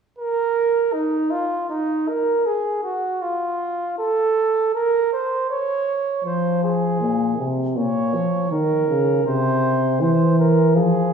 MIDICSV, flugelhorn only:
0, 0, Header, 1, 2, 480
1, 0, Start_track
1, 0, Tempo, 758534
1, 114, Time_signature, 4, 2, 24, 8
1, 4434, Tempo, 750000
1, 7075, End_track
2, 0, Start_track
2, 0, Title_t, "Flugelhorn"
2, 0, Program_c, 0, 56
2, 116, Note_on_c, 0, 70, 70
2, 588, Note_on_c, 0, 63, 64
2, 597, Note_off_c, 0, 70, 0
2, 827, Note_on_c, 0, 65, 66
2, 837, Note_off_c, 0, 63, 0
2, 1068, Note_off_c, 0, 65, 0
2, 1071, Note_on_c, 0, 63, 63
2, 1318, Note_on_c, 0, 70, 63
2, 1328, Note_off_c, 0, 63, 0
2, 1555, Note_on_c, 0, 68, 69
2, 1565, Note_off_c, 0, 70, 0
2, 1787, Note_off_c, 0, 68, 0
2, 1791, Note_on_c, 0, 66, 65
2, 2037, Note_on_c, 0, 65, 66
2, 2047, Note_off_c, 0, 66, 0
2, 2516, Note_off_c, 0, 65, 0
2, 2520, Note_on_c, 0, 69, 71
2, 2989, Note_off_c, 0, 69, 0
2, 3004, Note_on_c, 0, 70, 68
2, 3235, Note_off_c, 0, 70, 0
2, 3244, Note_on_c, 0, 72, 64
2, 3474, Note_off_c, 0, 72, 0
2, 3482, Note_on_c, 0, 73, 70
2, 3947, Note_off_c, 0, 73, 0
2, 3960, Note_on_c, 0, 72, 58
2, 4191, Note_off_c, 0, 72, 0
2, 4197, Note_on_c, 0, 68, 58
2, 4728, Note_off_c, 0, 68, 0
2, 4917, Note_on_c, 0, 73, 60
2, 5370, Note_off_c, 0, 73, 0
2, 5396, Note_on_c, 0, 70, 66
2, 5865, Note_off_c, 0, 70, 0
2, 5879, Note_on_c, 0, 72, 64
2, 6346, Note_off_c, 0, 72, 0
2, 6356, Note_on_c, 0, 72, 63
2, 6590, Note_off_c, 0, 72, 0
2, 6599, Note_on_c, 0, 70, 63
2, 6831, Note_off_c, 0, 70, 0
2, 6836, Note_on_c, 0, 68, 61
2, 7075, Note_off_c, 0, 68, 0
2, 7075, End_track
0, 0, End_of_file